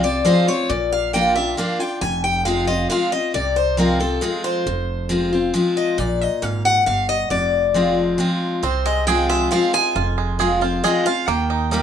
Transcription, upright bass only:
Already playing: C2
0.70 A#1
2.02 F1
3.34 C2
4.66 F1
5.98 A#1
6.42 G#1
6.87 G1
7.31 F1
8.63 C2
9.95 F1
11.28 D#2

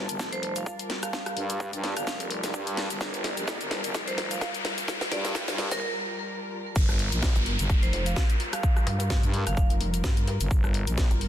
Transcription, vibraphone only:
0.32 C5
0.43 C5
0.56 F5
1.03 F5
1.97 F5
2.07 F5
4.07 C5
4.31 F5
5.12 D5
5.72 A#4
7.83 C5
7.93 C5
8.06 F5
8.53 F5
9.47 F5
9.57 F5

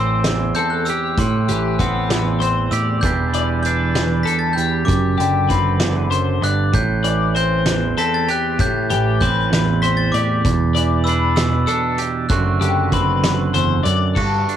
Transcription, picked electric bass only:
Already playing: A1
1.18 A2
1.49 A1
1.79 A1
2.72 A2
3.03 E1
4.88 F#1
5.19 F#1
5.50 F#1
6.42 G1
6.74 A1
8.60 A2
8.90 A1
9.22 A1
10.14 A2
10.45 E1
12.30 F#1
12.61 F#1
12.93 F#1
13.86 F#2
14.16 G2

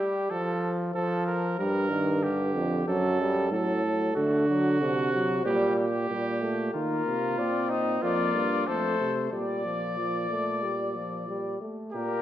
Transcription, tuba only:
1.59 G2
2.55 F2
2.88 F#2
3.52 A2
4.16 D3
4.81 C3
5.45 A#2
6.10 A#2
6.74 D#3
7.06 C3
7.38 A#2
8.02 F2
8.35 G2
8.68 F2
8.99 C3
9.33 A#2
11.94 A#2

